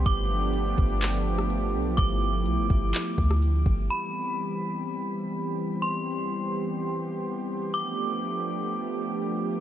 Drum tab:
HH |x---x-xxx---x---|x---x-o-x---x---|----------------|----------------|
CP |--------x-------|--------x-------|----------------|----------------|
SD |-----------r----|-----------r----|----------------|----------------|
BD |o-----o---------|o-----o---o---o-|----------------|----------------|

HH |----------------|
CP |----------------|
SD |----------------|
BD |----------------|